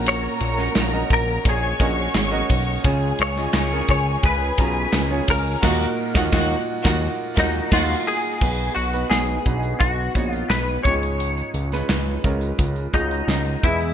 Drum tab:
CC |----------------|----------------|x-----------x---|x---------------|
RD |x-x-x-x-x-x-x-x-|x-x-x-x-x-x-x-x-|----------------|----------------|
HH |p-------------o-|p-------------o-|----------------|--xxxxxxx-xxxxxx|
CP |----x-------x---|----x-------x---|----------------|----x-------x---|
SD |---oo-------o---|---oo-------o---|o--oo--o--o-o---|----o-------o---|
BD |------o-o-o---o-|o-----o-o-o---o-|o--oo--o--o-o---|o-----o-o-o---o-|

CC |----------------|
RD |----------------|
HH |xxxxx-xxxxxxxxxx|
CP |----x-------x---|
SD |---oo-------o---|
BD |------o-o-o---o-|